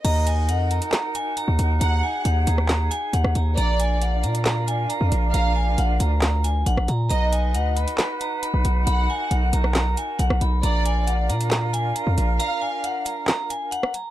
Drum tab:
CC |x---------------|----------------|----------------|----------------|
HH |x-x-x-xxx-x-x-x-|x---x-x-x-x-x-x-|x-x-x-xxx-x-x-x-|x---x-x-x-x-x-x-|
CP |--------x-------|--------x-------|--------x-------|--------x-------|
SD |--------o-------|-------ro----r--|--------o-------|--------o----r--|

CC |----------------|----------------|----------------|----------------|
HH |x-x-x-xxx-x-x-x-|x---x-x-x-x-x-x-|x-x-x-xxx-x-x-x-|x---x-x-x-x-x-x-|
CP |--------x-------|--------x-------|--------x-------|--------x-------|
SD |--------o-------|-------ro----r--|--------o-------|--------o----r--|